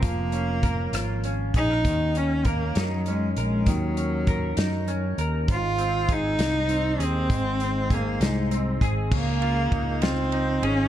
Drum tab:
CC |------|------|------|------|
RD |------|------|------|------|
HH |xxxxxx|xxxxxx|xxxxxx|xxxxxx|
SD |---r--|---o--|---o--|---o--|
BD |o-o--o|o-o---|o-o---|o-o---|

CC |------|x-----|
RD |------|-xxxxx|
HH |xxxxxx|------|
SD |---o--|---o--|
BD |o-o--o|o-o---|